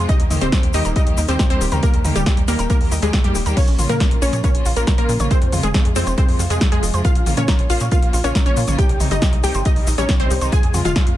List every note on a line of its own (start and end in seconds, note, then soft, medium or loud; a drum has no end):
0.09 0.24 D#3 medium
0.09 0.24 G3 medium
0.09 0.14 G3 medium
0.09 0.24 A#3 medium
0.09 0.38 D#4 medium
0.09 0.24 G4 medium
0.09 0.38 D#5 loud
0.09 kick loud
0.09 closed hi-hat medium
0.09 shaker soft
0.20 0.29 D#2 medium
0.20 closed hi-hat medium
0.31 0.40 D#2 loud
0.31 0.46 D#3 medium
0.31 0.46 G3 medium
0.31 0.46 A#3 medium
0.31 0.36 D#4 medium
0.31 0.46 G4 medium
0.31 open hi-hat loud
0.31 mid tom medium
0.31 shaker medium
0.41 0.51 D#1 medium
0.41 0.45 G3 loud
0.41 0.70 C4 medium
0.41 0.70 C5 medium
0.41 closed hi-hat medium
0.41 mid tom medium
0.41 shaker soft
0.52 0.68 D#3 medium
0.52 0.68 G3 medium
0.52 0.68 A#3 medium
0.52 0.56 G4 medium
0.52 0.68 G4 medium
0.52 kick loud
0.52 snare loud
0.52 closed hi-hat medium
0.52 shaker soft
0.63 0.72 D#2 medium
0.63 closed hi-hat medium
0.73 0.83 D#2 loud
0.73 0.90 D#3 medium
0.73 0.77 G3 medium
0.73 0.90 G3 medium
0.73 0.90 A#3 loud
0.73 0.93 D#4 medium
0.73 0.90 G4 medium
0.73 0.93 D#5 medium
0.73 open hi-hat loud
0.73 shaker medium
0.85 0.94 D#1 loud
0.85 0.93 A#4 medium
0.85 closed hi-hat medium
0.85 shaker soft
0.96 1.04 D#3 medium
0.96 1.01 G3 medium
0.96 1.04 G3 medium
0.96 1.04 A#3 medium
0.96 1.25 D#4 medium
0.96 1.04 G4 medium
0.96 1.25 D#5 medium
0.96 kick loud
0.96 closed hi-hat medium
0.96 shaker soft
1.07 1.16 D#2 medium
1.07 1.22 D#3 medium
1.07 1.22 G3 medium
1.07 1.22 A#3 loud
1.07 1.22 G4 medium
1.07 closed hi-hat medium
1.17 1.27 D#2 medium
1.17 1.23 D#4 medium
1.17 open hi-hat loud
1.17 shaker loud
1.28 1.37 D#2 medium
1.28 1.44 D#3 medium
1.28 1.32 G3 loud
1.28 1.44 G3 medium
1.28 1.44 A#3 medium
1.28 1.48 C4 medium
1.28 1.44 G4 medium
1.28 1.48 C5 medium
1.28 closed hi-hat medium
1.28 shaker medium
1.39 1.43 G4 medium
1.39 kick loud
1.39 snare loud
1.39 closed hi-hat medium
1.39 shaker soft
1.50 1.59 D#2 medium
1.50 1.66 D#3 medium
1.50 1.66 G3 medium
1.50 1.66 A#3 medium
1.50 1.79 C4 medium
1.50 1.66 G4 loud
1.50 1.79 C5 loud
1.50 closed hi-hat medium
1.61 1.70 D#1 loud
1.61 1.64 G3 medium
1.61 open hi-hat loud
1.61 shaker medium
1.71 1.81 D#2 medium
1.71 1.80 D#3 medium
1.71 1.80 G3 medium
1.71 1.80 A#3 medium
1.71 1.80 G4 medium
1.71 1.80 A#4 medium
1.71 closed hi-hat medium
1.71 mid tom medium
1.71 shaker medium
1.83 1.98 D#3 medium
1.83 1.88 G3 medium
1.83 1.98 G3 medium
1.83 1.98 A#3 medium
1.83 2.12 A#3 medium
1.83 1.98 G4 medium
1.83 2.12 A#4 loud
1.83 kick loud
1.83 closed hi-hat medium
1.83 shaker soft
1.94 2.03 D#2 medium
1.94 closed hi-hat medium
2.05 2.14 D#2 loud
2.05 2.20 D#3 medium
2.05 2.20 G3 medium
2.05 2.20 A#3 medium
2.05 2.10 D#4 medium
2.05 2.20 G4 medium
2.05 open hi-hat loud
2.05 mid tom medium
2.05 shaker medium
2.15 2.24 D#1 loud
2.15 2.44 G3 medium
2.15 2.19 G3 loud
2.15 2.44 G4 medium
2.15 closed hi-hat medium
2.15 mid tom medium
2.15 shaker medium
2.26 2.42 D#3 medium
2.26 2.42 G3 medium
2.26 2.42 A#3 medium
2.26 2.30 G4 medium
2.26 2.42 G4 medium
2.26 kick loud
2.26 snare loud
2.26 closed hi-hat medium
2.26 shaker soft
2.37 2.46 D#2 medium
2.37 closed hi-hat medium
2.48 2.57 D#2 loud
2.48 2.63 D#3 medium
2.48 2.63 G3 medium
2.48 2.51 G3 medium
2.48 2.67 A#3 medium
2.48 2.63 A#3 medium
2.48 2.63 G4 medium
2.48 2.67 A#4 medium
2.48 snare soft
2.48 open hi-hat loud
2.48 shaker medium
2.59 2.68 D#1 loud
2.59 2.67 A#4 medium
2.59 closed hi-hat medium
2.59 shaker medium
2.70 2.78 D#3 medium
2.70 2.75 G3 medium
2.70 2.78 G3 medium
2.70 2.99 A#3 medium
2.70 2.78 A#3 medium
2.70 2.78 G4 medium
2.70 2.99 A#4 loud
2.70 kick loud
2.70 closed hi-hat medium
2.70 shaker soft
2.81 2.90 D#2 medium
2.81 2.96 D#3 medium
2.81 2.96 G3 medium
2.81 2.96 A#3 medium
2.81 2.96 G4 medium
2.81 open hi-hat medium
2.92 3.01 D#2 medium
2.92 2.97 D#4 medium
2.92 open hi-hat loud
2.92 shaker loud
3.02 3.11 D#2 loud
3.02 3.18 D#3 medium
3.02 3.06 G3 loud
3.02 3.18 G3 medium
3.02 3.22 G#3 medium
3.02 3.18 A#3 medium
3.02 3.18 G4 medium
3.02 3.22 G#4 medium
3.02 closed hi-hat medium
3.02 shaker soft
3.13 3.17 G4 medium
3.13 kick loud
3.13 snare loud
3.13 closed hi-hat medium
3.13 shaker soft
3.24 3.33 F2 medium
3.24 3.39 D#3 medium
3.24 3.39 G3 loud
3.24 3.53 G3 medium
3.24 3.39 A#3 medium
3.24 3.39 G4 medium
3.24 3.53 G4 medium
3.24 closed hi-hat medium
3.35 3.44 D#1 loud
3.35 3.38 G3 medium
3.35 open hi-hat loud
3.35 shaker loud
3.46 3.55 D#2 medium
3.46 3.54 D#3 medium
3.46 3.54 G3 medium
3.46 3.54 A#3 medium
3.46 3.54 G4 medium
3.46 3.54 A#4 medium
3.46 closed hi-hat medium
3.46 shaker medium
3.57 3.72 C#3 medium
3.57 3.72 F3 medium
3.57 3.62 A#3 medium
3.57 3.72 A#3 medium
3.57 3.86 C#4 medium
3.57 3.72 F4 medium
3.57 3.86 C#5 loud
3.57 kick loud
3.57 closed hi-hat medium
3.57 crash medium
3.57 shaker soft
3.68 3.77 A#1 loud
3.68 closed hi-hat medium
3.79 3.88 A#1 loud
3.79 3.94 C#3 medium
3.79 3.94 F3 medium
3.79 3.94 A#3 medium
3.79 3.94 F4 medium
3.79 3.84 F4 medium
3.79 open hi-hat loud
3.79 mid tom medium
3.79 shaker loud
3.89 3.98 A#2 medium
3.89 3.93 A#3 loud
3.89 4.18 A#3 medium
3.89 4.18 A#4 medium
3.89 closed hi-hat medium
3.89 mid tom medium
3.89 shaker medium
4.00 4.16 C#3 medium
4.00 4.16 F3 medium
4.00 4.16 A#3 medium
4.00 4.16 F4 medium
4.00 4.03 A#4 medium
4.00 kick loud
4.00 snare loud
4.00 closed hi-hat medium
4.00 shaker soft
4.11 4.20 A#1 medium
4.11 closed hi-hat medium
4.22 4.31 A#1 loud
4.22 4.37 C#3 medium
4.22 4.37 F3 medium
4.22 4.25 A#3 medium
4.22 4.37 A#3 medium
4.22 4.41 C#4 medium
4.22 4.37 F4 loud
4.22 4.41 C#5 medium
4.22 open hi-hat loud
4.22 shaker loud
4.33 4.42 A#2 loud
4.33 4.41 C#5 medium
4.33 closed hi-hat medium
4.33 shaker medium
4.44 4.51 C#3 medium
4.44 4.51 F3 medium
4.44 4.51 A#3 medium
4.44 4.49 A#3 medium
4.44 4.73 C#4 medium
4.44 4.51 F4 medium
4.44 4.73 C#5 medium
4.44 kick loud
4.44 closed hi-hat medium
4.44 shaker soft
4.55 4.63 A#1 medium
4.55 4.70 C#3 medium
4.55 4.70 F3 loud
4.55 4.70 A#3 medium
4.55 4.70 F4 medium
4.55 closed hi-hat medium
4.65 4.74 A#1 loud
4.65 4.71 F4 medium
4.65 open hi-hat loud
4.65 shaker loud
4.76 4.85 A#1 medium
4.76 4.92 C#3 medium
4.76 4.92 F3 medium
4.76 4.80 A#3 loud
4.76 4.92 A#3 medium
4.76 4.96 A#3 medium
4.76 4.92 F4 medium
4.76 4.96 A#4 medium
4.76 closed hi-hat medium
4.76 shaker soft
4.87 4.90 A#4 medium
4.87 kick loud
4.87 snare loud
4.87 closed hi-hat medium
4.87 shaker soft
4.98 5.07 A#1 medium
4.98 5.14 C#3 medium
4.98 5.14 F3 medium
4.98 5.27 A#3 medium
4.98 5.14 A#3 loud
4.98 5.14 F4 loud
4.98 5.27 A#4 medium
4.98 closed hi-hat medium
5.09 5.18 A#2 loud
5.09 5.12 A#3 medium
5.09 open hi-hat loud
5.09 shaker medium
5.19 5.29 A#1 medium
5.19 5.28 C#3 medium
5.19 5.28 F3 medium
5.19 5.28 A#3 medium
5.19 5.28 F4 medium
5.19 5.28 C#5 medium
5.19 closed hi-hat medium
5.19 mid tom medium
5.19 shaker medium
5.31 5.46 C3 medium
5.31 5.46 F3 medium
5.31 5.46 G#3 medium
5.31 5.36 G#3 medium
5.31 5.60 C4 medium
5.31 5.46 F4 medium
5.31 5.60 C5 loud
5.31 kick loud
5.31 closed hi-hat medium
5.31 shaker soft
5.42 5.50 F2 medium
5.42 closed hi-hat medium
5.52 5.61 F2 loud
5.52 5.68 C3 medium
5.52 5.68 F3 medium
5.52 5.68 G#3 medium
5.52 5.58 F4 medium
5.52 5.68 F4 medium
5.52 open hi-hat loud
5.52 mid tom medium
5.52 shaker medium
5.63 5.72 F1 medium
5.63 5.92 G#3 medium
5.63 5.67 G#3 loud
5.63 5.92 G#4 loud
5.63 closed hi-hat medium
5.63 mid tom medium
5.63 shaker medium
5.74 5.90 C3 medium
5.74 5.90 F3 medium
5.74 5.90 G#3 medium
5.74 5.90 F4 medium
5.74 5.77 G#4 medium
5.74 kick loud
5.74 snare loud
5.74 closed hi-hat medium
5.74 shaker soft
5.85 5.94 F2 medium
5.85 closed hi-hat medium
5.96 6.05 F2 loud
5.96 6.11 C3 medium
5.96 6.11 F3 medium
5.96 5.99 G#3 medium
5.96 6.11 G#3 medium
5.96 6.15 C4 medium
5.96 6.11 F4 medium
5.96 6.15 C5 medium
5.96 snare soft
5.96 open hi-hat loud
5.96 shaker loud
6.07 6.16 F1 loud
6.07 6.15 C5 medium
6.07 closed hi-hat medium
6.07 shaker medium
6.18 6.25 C3 medium
6.18 6.25 F3 medium
6.18 6.23 G#3 medium
6.18 6.25 G#3 medium
6.18 6.46 C4 medium
6.18 6.25 F4 medium
6.18 6.46 C5 medium
6.18 kick loud
6.18 closed hi-hat medium
6.18 shaker soft
6.29 6.37 F2 medium
6.29 6.44 C3 loud
6.29 6.44 F3 medium
6.29 6.44 G#3 medium
6.29 6.44 F4 medium
6.29 open hi-hat medium
6.39 6.48 F2 loud
6.39 6.45 F4 medium
6.39 open hi-hat loud
6.39 shaker loud
6.50 6.59 F2 loud
6.50 6.66 C3 medium
6.50 6.66 F3 medium
6.50 6.69 G#3 medium
6.50 6.66 G#3 medium
6.50 6.54 G#3 loud
6.50 6.66 F4 medium
6.50 6.69 G#4 medium
6.50 closed hi-hat medium
6.50 shaker medium
6.61 6.64 G#4 medium
6.61 kick loud
6.61 snare loud
6.61 closed hi-hat medium
6.61 shaker soft
6.72 6.81 F2 medium
6.72 6.87 C3 loud
6.72 6.87 F3 loud
6.72 7.01 G#3 medium
6.72 6.87 G#3 loud
6.72 6.87 F4 medium
6.72 7.01 G#4 loud
6.72 closed hi-hat medium
6.83 6.92 F1 loud
6.83 6.86 G#3 medium
6.83 open hi-hat loud
6.83 shaker medium
6.94 7.03 F2 medium
6.94 7.01 C3 medium
6.94 7.01 F3 medium
6.94 7.01 G#3 medium
6.94 7.01 F4 medium
6.94 7.02 C5 medium
6.94 closed hi-hat medium
6.94 shaker medium
7.04 7.20 C#3 medium
7.04 7.20 F3 medium
7.04 7.20 A#3 medium
7.04 7.10 A#3 medium
7.04 7.20 F4 medium
7.04 7.33 F4 medium
7.04 7.33 F5 loud
7.04 kick loud
7.04 closed hi-hat medium
7.04 shaker soft
7.15 7.24 A#1 medium
7.15 closed hi-hat medium
7.26 7.35 A#1 loud
7.26 7.42 C#3 medium
7.26 7.42 F3 medium
7.26 7.42 A#3 medium
7.26 7.42 F4 medium
7.26 7.32 F4 medium
7.26 open hi-hat loud
7.26 mid tom medium
7.26 shaker medium
7.37 7.46 A#2 loud
7.37 7.40 A#3 loud
7.37 7.66 C#4 medium
7.37 7.66 C#5 medium
7.37 closed hi-hat medium
7.37 mid tom medium
7.37 shaker medium
7.48 7.63 C#3 medium
7.48 7.63 F3 medium
7.48 7.63 A#3 medium
7.48 7.63 F4 medium
7.48 7.51 A#4 medium
7.48 kick loud
7.48 snare loud
7.48 closed hi-hat medium
7.48 shaker soft
7.59 7.68 A#1 medium
7.59 closed hi-hat medium
7.70 7.79 A#1 loud
7.70 7.85 C#3 medium
7.70 7.85 F3 loud
7.70 7.85 A#3 loud
7.70 7.73 A#3 medium
7.70 7.85 F4 medium
7.70 7.89 F4 medium
7.70 7.89 F5 medium
7.70 open hi-hat loud
7.70 shaker medium
7.80 7.90 A#2 loud
7.80 7.89 C#5 medium
7.80 closed hi-hat medium
7.80 shaker medium
7.92 7.99 C#3 medium
7.92 7.99 F3 medium
7.92 7.99 A#3 medium
7.92 7.97 A#3 medium
7.92 7.99 F4 medium
7.92 8.20 F4 medium
7.92 8.20 F5 medium
7.92 kick loud
7.92 closed hi-hat medium
7.92 shaker soft
8.02 8.11 A#1 medium
8.02 8.18 C#3 loud
8.02 8.17 F3 medium
8.02 8.17 A#3 medium
8.02 8.17 F4 medium
8.02 closed hi-hat medium
8.13 8.22 A#1 loud
8.13 8.19 F4 medium
8.13 open hi-hat loud
8.13 shaker medium
8.24 8.33 A#1 medium
8.24 8.39 C#3 medium
8.24 8.39 F3 medium
8.24 8.39 A#3 medium
8.24 8.27 A#3 loud
8.24 8.43 C#4 medium
8.24 8.39 F4 medium
8.24 8.43 C#5 medium
8.24 closed hi-hat medium
8.24 shaker medium
8.35 8.38 A#4 medium
8.35 kick loud
8.35 snare loud
8.35 closed hi-hat medium
8.35 shaker soft
8.45 8.55 A#1 medium
8.45 8.61 C#3 medium
8.45 8.61 F3 medium
8.45 8.61 A#3 medium
8.45 8.75 C#4 medium
8.45 8.61 F4 medium
8.45 8.75 C#5 medium
8.45 closed hi-hat medium
8.57 8.66 A#2 loud
8.57 8.60 A#3 medium
8.57 open hi-hat loud
8.57 shaker loud
8.67 8.77 A#1 medium
8.67 8.75 C#3 medium
8.67 8.75 F3 medium
8.67 8.75 A#3 medium
8.67 8.75 F4 medium
8.67 8.76 C#5 medium
8.67 closed hi-hat medium
8.67 mid tom medium
8.67 shaker medium
8.78 8.94 C3 medium
8.78 8.94 D#3 medium
8.78 8.94 G3 medium
8.78 8.84 G3 medium
8.78 8.94 D#4 medium
8.78 9.07 G4 medium
8.78 9.07 G5 loud
8.78 kick loud
8.78 closed hi-hat medium
8.78 shaker soft
8.89 8.98 C2 loud
8.89 closed hi-hat medium
9.00 9.09 C2 loud
9.00 9.15 C3 medium
9.00 9.15 D#3 medium
9.00 9.15 G3 medium
9.00 9.15 D#4 medium
9.00 9.06 D#4 medium
9.00 open hi-hat loud
9.00 mid tom medium
9.00 shaker medium
9.11 9.20 G1 loud
9.11 9.14 G3 loud
9.11 9.40 D#4 medium
9.11 9.40 D#5 medium
9.11 closed hi-hat medium
9.11 mid tom medium
9.11 shaker medium
9.22 9.37 C3 medium
9.22 9.37 D#3 medium
9.22 9.37 G3 medium
9.22 9.37 D#4 medium
9.22 9.25 G4 medium
9.22 kick loud
9.22 snare loud
9.22 closed hi-hat medium
9.22 shaker soft
9.33 9.42 C2 medium
9.33 closed hi-hat medium
9.43 9.53 C2 loud
9.43 9.59 C3 medium
9.43 9.59 D#3 medium
9.43 9.59 G3 medium
9.43 9.47 G3 medium
9.43 9.59 D#4 medium
9.43 9.63 G4 medium
9.43 9.63 G5 medium
9.43 snare soft
9.43 open hi-hat loud
9.43 shaker medium
9.54 9.64 G1 loud
9.54 9.63 C5 medium
9.54 closed hi-hat medium
9.54 shaker medium
9.65 9.73 C3 medium
9.65 9.73 D#3 medium
9.65 9.73 G3 medium
9.65 9.71 G3 medium
9.65 9.94 D#4 medium
9.65 9.73 D#4 medium
9.65 9.94 D#5 medium
9.65 kick loud
9.65 closed hi-hat medium
9.65 shaker soft
9.76 9.85 C2 medium
9.76 9.92 C3 medium
9.76 9.92 D#3 medium
9.76 9.92 G3 medium
9.76 9.92 D#4 medium
9.76 open hi-hat medium
9.87 9.96 A#1 loud
9.87 9.93 D#4 medium
9.87 open hi-hat loud
9.87 shaker loud
9.98 10.07 A#1 medium
9.98 10.13 C3 medium
9.98 10.13 D#3 medium
9.98 10.13 G3 medium
9.98 10.01 G3 loud
9.98 10.17 C#4 medium
9.98 10.13 D#4 medium
9.98 10.17 C#5 medium
9.98 closed hi-hat medium
9.98 shaker medium
10.09 10.12 G4 medium
10.09 kick loud
10.09 snare loud
10.09 closed hi-hat medium
10.09 shaker soft
10.20 10.29 C2 medium
10.20 10.35 C3 medium
10.20 10.35 D#3 medium
10.20 10.35 G3 loud
10.20 10.49 C4 medium
10.20 10.35 D#4 medium
10.20 10.49 C5 loud
10.20 closed hi-hat medium
10.31 10.40 C2 loud
10.31 10.34 G3 medium
10.31 open hi-hat loud
10.31 shaker loud
10.41 10.50 C2 medium
10.41 10.49 C3 medium
10.41 10.49 D#3 loud
10.41 10.49 G3 medium
10.41 10.49 D#4 medium
10.41 10.49 C5 medium
10.41 closed hi-hat medium
10.41 shaker medium
10.52 10.68 C3 medium
10.52 10.67 F3 medium
10.52 10.68 G#3 medium
10.52 10.58 G#3 medium
10.52 10.68 F4 medium
10.52 10.81 G#4 medium
10.52 10.81 G#5 loud
10.52 kick loud
10.52 closed hi-hat medium
10.52 shaker soft
10.63 10.72 F2 medium
10.63 closed hi-hat medium
10.74 10.83 F2 medium
10.74 10.89 C3 medium
10.74 10.89 F3 medium
10.74 10.89 G#3 medium
10.74 10.89 F4 medium
10.74 10.79 F4 medium
10.74 open hi-hat loud
10.74 mid tom medium
10.74 shaker loud
10.85 10.94 F1 medium
10.85 10.88 G#3 loud
10.85 11.14 F4 medium
10.85 11.14 F5 loud
10.85 closed hi-hat medium
10.85 mid tom medium
10.85 shaker soft
10.96 11.11 C3 medium
10.96 11.11 F3 medium
10.96 11.11 G#3 medium
10.96 11.11 F4 medium
10.96 10.99 G#4 medium
10.96 kick loud
10.96 snare loud
10.96 closed hi-hat medium
10.96 shaker soft
11.07 11.16 F2 medium
11.07 closed hi-hat medium